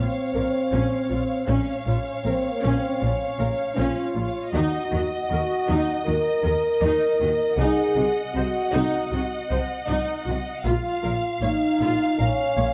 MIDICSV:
0, 0, Header, 1, 7, 480
1, 0, Start_track
1, 0, Key_signature, -5, "minor"
1, 0, Tempo, 764331
1, 931, Time_signature, 4, 2, 24, 8
1, 7998, End_track
2, 0, Start_track
2, 0, Title_t, "Violin section"
2, 0, Program_c, 0, 48
2, 0, Note_on_c, 0, 77, 40
2, 910, Note_off_c, 0, 77, 0
2, 938, Note_on_c, 0, 77, 44
2, 2824, Note_off_c, 0, 77, 0
2, 2849, Note_on_c, 0, 75, 52
2, 4739, Note_off_c, 0, 75, 0
2, 4769, Note_on_c, 0, 78, 58
2, 6662, Note_off_c, 0, 78, 0
2, 6699, Note_on_c, 0, 77, 53
2, 7998, Note_off_c, 0, 77, 0
2, 7998, End_track
3, 0, Start_track
3, 0, Title_t, "Violin section"
3, 0, Program_c, 1, 48
3, 0, Note_on_c, 1, 73, 39
3, 907, Note_off_c, 1, 73, 0
3, 937, Note_on_c, 1, 73, 44
3, 2824, Note_off_c, 1, 73, 0
3, 2847, Note_on_c, 1, 75, 49
3, 6660, Note_off_c, 1, 75, 0
3, 6689, Note_on_c, 1, 77, 55
3, 7998, Note_off_c, 1, 77, 0
3, 7998, End_track
4, 0, Start_track
4, 0, Title_t, "Viola section"
4, 0, Program_c, 2, 48
4, 214, Note_on_c, 2, 70, 35
4, 264, Note_off_c, 2, 70, 0
4, 451, Note_on_c, 2, 61, 42
4, 674, Note_off_c, 2, 61, 0
4, 689, Note_on_c, 2, 65, 32
4, 739, Note_off_c, 2, 65, 0
4, 930, Note_on_c, 2, 61, 49
4, 1152, Note_off_c, 2, 61, 0
4, 1175, Note_on_c, 2, 65, 33
4, 1226, Note_off_c, 2, 65, 0
4, 1418, Note_on_c, 2, 70, 37
4, 1468, Note_off_c, 2, 70, 0
4, 1649, Note_on_c, 2, 61, 53
4, 1871, Note_off_c, 2, 61, 0
4, 1886, Note_on_c, 2, 65, 34
4, 1937, Note_off_c, 2, 65, 0
4, 2133, Note_on_c, 2, 70, 41
4, 2184, Note_off_c, 2, 70, 0
4, 2366, Note_on_c, 2, 61, 55
4, 2589, Note_off_c, 2, 61, 0
4, 2618, Note_on_c, 2, 65, 35
4, 2668, Note_off_c, 2, 65, 0
4, 2859, Note_on_c, 2, 63, 60
4, 3076, Note_off_c, 2, 63, 0
4, 3101, Note_on_c, 2, 66, 38
4, 3152, Note_off_c, 2, 66, 0
4, 3343, Note_on_c, 2, 70, 36
4, 3394, Note_off_c, 2, 70, 0
4, 3575, Note_on_c, 2, 63, 51
4, 3794, Note_off_c, 2, 63, 0
4, 3817, Note_on_c, 2, 66, 38
4, 3868, Note_off_c, 2, 66, 0
4, 4051, Note_on_c, 2, 70, 43
4, 4101, Note_off_c, 2, 70, 0
4, 4290, Note_on_c, 2, 63, 51
4, 4509, Note_off_c, 2, 63, 0
4, 4542, Note_on_c, 2, 66, 39
4, 4592, Note_off_c, 2, 66, 0
4, 4765, Note_on_c, 2, 63, 55
4, 4988, Note_off_c, 2, 63, 0
4, 5006, Note_on_c, 2, 66, 34
4, 5056, Note_off_c, 2, 66, 0
4, 5253, Note_on_c, 2, 72, 40
4, 5303, Note_off_c, 2, 72, 0
4, 5484, Note_on_c, 2, 63, 65
4, 5707, Note_off_c, 2, 63, 0
4, 5731, Note_on_c, 2, 66, 49
4, 5781, Note_off_c, 2, 66, 0
4, 5974, Note_on_c, 2, 72, 46
4, 6025, Note_off_c, 2, 72, 0
4, 6196, Note_on_c, 2, 63, 62
4, 6422, Note_off_c, 2, 63, 0
4, 6440, Note_on_c, 2, 66, 39
4, 6490, Note_off_c, 2, 66, 0
4, 6685, Note_on_c, 2, 65, 55
4, 6910, Note_off_c, 2, 65, 0
4, 6927, Note_on_c, 2, 70, 33
4, 6977, Note_off_c, 2, 70, 0
4, 7172, Note_on_c, 2, 73, 40
4, 7222, Note_off_c, 2, 73, 0
4, 7415, Note_on_c, 2, 65, 51
4, 7635, Note_off_c, 2, 65, 0
4, 7645, Note_on_c, 2, 70, 37
4, 7695, Note_off_c, 2, 70, 0
4, 7891, Note_on_c, 2, 73, 41
4, 7941, Note_off_c, 2, 73, 0
4, 7998, End_track
5, 0, Start_track
5, 0, Title_t, "French horn section"
5, 0, Program_c, 3, 60
5, 0, Note_on_c, 3, 60, 61
5, 913, Note_off_c, 3, 60, 0
5, 925, Note_on_c, 3, 61, 61
5, 1396, Note_off_c, 3, 61, 0
5, 1411, Note_on_c, 3, 60, 61
5, 1569, Note_off_c, 3, 60, 0
5, 1574, Note_on_c, 3, 58, 53
5, 1729, Note_on_c, 3, 60, 54
5, 1731, Note_off_c, 3, 58, 0
5, 1888, Note_off_c, 3, 60, 0
5, 1898, Note_on_c, 3, 61, 64
5, 2363, Note_on_c, 3, 65, 67
5, 2371, Note_off_c, 3, 61, 0
5, 2844, Note_on_c, 3, 66, 80
5, 2845, Note_off_c, 3, 65, 0
5, 3785, Note_off_c, 3, 66, 0
5, 3800, Note_on_c, 3, 70, 79
5, 4741, Note_off_c, 3, 70, 0
5, 4764, Note_on_c, 3, 68, 76
5, 5138, Note_off_c, 3, 68, 0
5, 5245, Note_on_c, 3, 66, 68
5, 5950, Note_off_c, 3, 66, 0
5, 6683, Note_on_c, 3, 65, 77
5, 7143, Note_off_c, 3, 65, 0
5, 7176, Note_on_c, 3, 63, 65
5, 7653, Note_off_c, 3, 63, 0
5, 7655, Note_on_c, 3, 61, 73
5, 7998, Note_off_c, 3, 61, 0
5, 7998, End_track
6, 0, Start_track
6, 0, Title_t, "Cello section"
6, 0, Program_c, 4, 48
6, 216, Note_on_c, 4, 46, 36
6, 266, Note_off_c, 4, 46, 0
6, 459, Note_on_c, 4, 46, 51
6, 509, Note_off_c, 4, 46, 0
6, 694, Note_on_c, 4, 46, 30
6, 744, Note_off_c, 4, 46, 0
6, 933, Note_on_c, 4, 46, 48
6, 983, Note_off_c, 4, 46, 0
6, 1168, Note_on_c, 4, 46, 38
6, 1219, Note_off_c, 4, 46, 0
6, 1405, Note_on_c, 4, 46, 35
6, 1455, Note_off_c, 4, 46, 0
6, 1656, Note_on_c, 4, 46, 57
6, 1707, Note_off_c, 4, 46, 0
6, 1893, Note_on_c, 4, 46, 40
6, 1943, Note_off_c, 4, 46, 0
6, 2125, Note_on_c, 4, 46, 38
6, 2176, Note_off_c, 4, 46, 0
6, 2365, Note_on_c, 4, 46, 52
6, 2415, Note_off_c, 4, 46, 0
6, 2602, Note_on_c, 4, 46, 38
6, 2652, Note_off_c, 4, 46, 0
6, 2843, Note_on_c, 4, 51, 52
6, 2894, Note_off_c, 4, 51, 0
6, 3084, Note_on_c, 4, 51, 46
6, 3135, Note_off_c, 4, 51, 0
6, 3326, Note_on_c, 4, 51, 35
6, 3376, Note_off_c, 4, 51, 0
6, 3567, Note_on_c, 4, 51, 64
6, 3617, Note_off_c, 4, 51, 0
6, 3806, Note_on_c, 4, 51, 40
6, 3856, Note_off_c, 4, 51, 0
6, 4038, Note_on_c, 4, 51, 40
6, 4089, Note_off_c, 4, 51, 0
6, 4278, Note_on_c, 4, 51, 53
6, 4328, Note_off_c, 4, 51, 0
6, 4523, Note_on_c, 4, 51, 40
6, 4573, Note_off_c, 4, 51, 0
6, 4755, Note_on_c, 4, 48, 61
6, 4805, Note_off_c, 4, 48, 0
6, 5001, Note_on_c, 4, 48, 46
6, 5051, Note_off_c, 4, 48, 0
6, 5245, Note_on_c, 4, 48, 44
6, 5295, Note_off_c, 4, 48, 0
6, 5485, Note_on_c, 4, 48, 64
6, 5536, Note_off_c, 4, 48, 0
6, 5731, Note_on_c, 4, 48, 48
6, 5782, Note_off_c, 4, 48, 0
6, 5972, Note_on_c, 4, 48, 41
6, 6022, Note_off_c, 4, 48, 0
6, 6208, Note_on_c, 4, 48, 57
6, 6259, Note_off_c, 4, 48, 0
6, 6458, Note_on_c, 4, 48, 41
6, 6509, Note_off_c, 4, 48, 0
6, 6691, Note_on_c, 4, 46, 60
6, 6741, Note_off_c, 4, 46, 0
6, 6933, Note_on_c, 4, 46, 45
6, 6983, Note_off_c, 4, 46, 0
6, 7177, Note_on_c, 4, 46, 42
6, 7227, Note_off_c, 4, 46, 0
6, 7414, Note_on_c, 4, 46, 65
6, 7464, Note_off_c, 4, 46, 0
6, 7657, Note_on_c, 4, 46, 44
6, 7708, Note_off_c, 4, 46, 0
6, 7896, Note_on_c, 4, 46, 38
6, 7946, Note_off_c, 4, 46, 0
6, 7998, End_track
7, 0, Start_track
7, 0, Title_t, "Double bass section"
7, 0, Program_c, 5, 48
7, 215, Note_on_c, 5, 34, 36
7, 265, Note_off_c, 5, 34, 0
7, 455, Note_on_c, 5, 34, 50
7, 505, Note_off_c, 5, 34, 0
7, 692, Note_on_c, 5, 34, 34
7, 742, Note_off_c, 5, 34, 0
7, 932, Note_on_c, 5, 34, 49
7, 982, Note_off_c, 5, 34, 0
7, 1176, Note_on_c, 5, 34, 43
7, 1226, Note_off_c, 5, 34, 0
7, 1415, Note_on_c, 5, 34, 35
7, 1466, Note_off_c, 5, 34, 0
7, 1654, Note_on_c, 5, 34, 45
7, 1704, Note_off_c, 5, 34, 0
7, 1900, Note_on_c, 5, 34, 39
7, 1950, Note_off_c, 5, 34, 0
7, 2137, Note_on_c, 5, 34, 39
7, 2187, Note_off_c, 5, 34, 0
7, 2376, Note_on_c, 5, 34, 50
7, 2426, Note_off_c, 5, 34, 0
7, 2611, Note_on_c, 5, 34, 35
7, 2661, Note_off_c, 5, 34, 0
7, 2850, Note_on_c, 5, 39, 53
7, 2900, Note_off_c, 5, 39, 0
7, 3094, Note_on_c, 5, 39, 44
7, 3144, Note_off_c, 5, 39, 0
7, 3334, Note_on_c, 5, 39, 40
7, 3384, Note_off_c, 5, 39, 0
7, 3576, Note_on_c, 5, 39, 50
7, 3626, Note_off_c, 5, 39, 0
7, 3814, Note_on_c, 5, 39, 43
7, 3864, Note_off_c, 5, 39, 0
7, 4046, Note_on_c, 5, 39, 41
7, 4097, Note_off_c, 5, 39, 0
7, 4278, Note_on_c, 5, 39, 55
7, 4328, Note_off_c, 5, 39, 0
7, 4521, Note_on_c, 5, 39, 42
7, 4571, Note_off_c, 5, 39, 0
7, 4756, Note_on_c, 5, 36, 58
7, 4806, Note_off_c, 5, 36, 0
7, 5000, Note_on_c, 5, 36, 48
7, 5051, Note_off_c, 5, 36, 0
7, 5242, Note_on_c, 5, 36, 43
7, 5292, Note_off_c, 5, 36, 0
7, 5480, Note_on_c, 5, 36, 55
7, 5530, Note_off_c, 5, 36, 0
7, 5726, Note_on_c, 5, 36, 42
7, 5776, Note_off_c, 5, 36, 0
7, 5973, Note_on_c, 5, 36, 45
7, 6023, Note_off_c, 5, 36, 0
7, 6203, Note_on_c, 5, 36, 48
7, 6253, Note_off_c, 5, 36, 0
7, 6444, Note_on_c, 5, 36, 41
7, 6494, Note_off_c, 5, 36, 0
7, 6685, Note_on_c, 5, 34, 61
7, 6735, Note_off_c, 5, 34, 0
7, 6926, Note_on_c, 5, 34, 42
7, 6976, Note_off_c, 5, 34, 0
7, 7167, Note_on_c, 5, 34, 42
7, 7217, Note_off_c, 5, 34, 0
7, 7406, Note_on_c, 5, 34, 50
7, 7456, Note_off_c, 5, 34, 0
7, 7655, Note_on_c, 5, 34, 38
7, 7706, Note_off_c, 5, 34, 0
7, 7893, Note_on_c, 5, 34, 43
7, 7943, Note_off_c, 5, 34, 0
7, 7998, End_track
0, 0, End_of_file